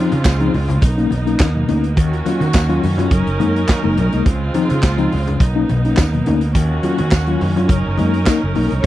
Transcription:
Already playing: string section C#3 G#3 C4 F4, tine electric piano F3 C4 D#4
0.12 fingered electric bass C#3, closed hi-hat, high conga
0.25 fingered electric bass C#2, kick, snare, clap, closed hi-hat, tambourine
0.40 tine electric piano F3 C4 D#4, closed hi-hat
0.54 fingered electric bass C#2, open hi-hat, muted conga, low conga
0.69 tine electric piano C#3, closed hi-hat, low conga
0.82 fingered electric bass B1, string section A#3 B3 D#4, kick, closed hi-hat, muted conga
0.97 tine electric piano A#3 C#4 D#4, closed hi-hat
1.10 fingered electric bass B1, tine electric piano B2 F#3, closed hi-hat, high conga
1.26 tine electric piano A#3 C#4 D#4, closed hi-hat
1.39 fingered electric bass D#2, tine electric piano C#4 D#4, kick, snare, clap, closed hi-hat, tambourine, high conga
1.55 tine electric piano B2 F#3
1.68 fingered electric bass D2, tine electric piano A#3 C#4 D#4, closed hi-hat, high conga, low conga
1.84 closed hi-hat
1.96 fingered electric bass D#2, string section D#3 C#4 F#4, tine electric piano D#3, kick, closed hi-hat, muted conga
2.13 tine electric piano C#4 F4, closed hi-hat
2.25 tine electric piano F#3 C#4 F4, closed hi-hat, muted conga, high conga
2.40 fingered electric bass D#3, closed hi-hat, high conga
2.53 fingered electric bass D#2, kick, snare, clap, closed hi-hat, tambourine, muted conga
2.69 tine electric piano F#3 C#4 F4, closed hi-hat
2.83 fingered electric bass F#2, tine electric piano D#3, open hi-hat, muted conga, low conga
2.98 tine electric piano F#3 C#4 F4, closed hi-hat, low conga
3.11 fingered electric bass F#1, tine electric piano F#3, string section F#3 D#4 A#4, kick, closed hi-hat
3.27 fingered electric bass F#1, closed hi-hat
3.40 fingered electric bass F#2, tine electric piano G#3 A#3 D#4, closed hi-hat, muted conga, high conga
3.55 tine electric piano A#3 D#4, closed hi-hat
3.68 kick, snare, clap, closed hi-hat, tambourine, high conga
3.83 fingered electric bass F#1, tine electric piano G#3 A#3 D#4
3.97 fingered electric bass B1, tine electric piano F#3, closed hi-hat, muted conga, high conga, low conga
4.12 fingered electric bass C2, tine electric piano G#3 A#3 D#4, closed hi-hat
4.25 fingered electric bass C#2, tine electric piano C#3, string section C#3 G#3 C4 F4, kick, closed hi-hat
4.54 tine electric piano F3 C4 D#4, closed hi-hat, high conga
4.69 fingered electric bass C#3, tine electric piano C4 D#4, closed hi-hat, high conga
4.83 fingered electric bass C#2, kick, snare, clap, closed hi-hat, tambourine, muted conga
4.98 tine electric piano F3 C4 D#4, closed hi-hat
5.12 fingered electric bass C#2, open hi-hat, muted conga, low conga
5.27 tine electric piano C#3, closed hi-hat, low conga
5.40 fingered electric bass B1, string section A#3 B3 D#4, kick, closed hi-hat, muted conga
5.55 tine electric piano A#3 C#4 D#4
5.69 fingered electric bass B1, tine electric piano B2 F#3, closed hi-hat, high conga
5.85 tine electric piano A#3 C#4 D#4, closed hi-hat
5.97 fingered electric bass D#2, tine electric piano C#4 D#4, kick, snare, clap, closed hi-hat, tambourine, muted conga, high conga
6.13 tine electric piano B2 F#3, closed hi-hat
6.26 fingered electric bass D2, tine electric piano A#3 C#4 D#4, closed hi-hat, muted conga, high conga, low conga
6.41 closed hi-hat
6.54 fingered electric bass D#2, string section D#3 C#4 F#4, tine electric piano D#3, kick, closed hi-hat, muted conga
6.70 tine electric piano C#4 F4
6.83 tine electric piano F#3 C#4 F4, closed hi-hat, muted conga, high conga
6.98 fingered electric bass D#3, closed hi-hat, high conga
7.11 fingered electric bass D#2, kick, snare, clap, closed hi-hat, tambourine, muted conga
7.26 tine electric piano F#3 C#4 F4, closed hi-hat
7.41 fingered electric bass F#2, tine electric piano D#3, open hi-hat, muted conga, low conga
7.56 tine electric piano F#3 C#4 F4, closed hi-hat, low conga
7.69 fingered electric bass F#1, string section F#3 D#4 A#4, tine electric piano F#3, kick, closed hi-hat, muted conga
7.86 fingered electric bass F#1
7.98 fingered electric bass F#2, tine electric piano G#3 A#3 D#4, closed hi-hat, muted conga, high conga
8.13 tine electric piano A#3 D#4, closed hi-hat
8.25 tine electric piano A#3 D#4, kick, snare, clap, closed hi-hat, tambourine, muted conga, high conga
8.42 fingered electric bass F#1, tine electric piano F#3
8.55 fingered electric bass B1, tine electric piano A#3 D#4, open hi-hat, muted conga, high conga, low conga
8.71 fingered electric bass C2, closed hi-hat

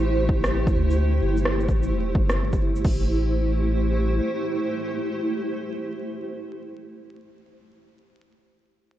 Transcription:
Already playing: sub bass A1, ambient pad A3 E4 G4 C5, synth texture C5
0.29 kick
0.44 cross-stick, shaker
0.67 kick, shaker
0.75 sub bass D2
0.90 shaker
1.22 sub bass G1
1.37 shaker
1.45 cross-stick
1.60 shaker
1.68 sub bass A1, kick, shaker
1.83 shaker
1.92 sub bass E1
2.15 sub bass G1, kick
2.29 cross-stick, shaker
2.53 kick, shaker
2.76 shaker
2.85 sub bass A1, ambient pad A3 E4 G4 C5, kick, crash

